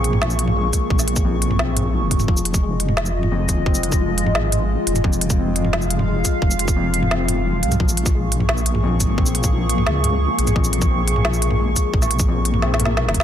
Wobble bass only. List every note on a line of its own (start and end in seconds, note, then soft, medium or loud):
0.00 0.72 A#1 loud
0.90 2.04 A#1 loud
2.02 2.27 F1 medium
2.28 3.48 F1 loud
3.49 3.65 D#1 medium
3.66 4.34 F1 loud
4.35 4.77 G#1 loud
4.87 5.03 F1 loud
5.04 6.24 F1 loud
6.42 7.56 F1 loud
7.54 7.64 D#1 medium
7.63 7.79 C2 loud
7.80 9.00 A#1 loud
9.01 9.17 G#1 medium
9.18 9.86 A#1 loud
9.87 10.29 C#2 medium
10.38 10.54 A#1 loud
10.56 11.75 A#1 loud
11.94 13.07 A#1 loud
13.06 13.24 F1 medium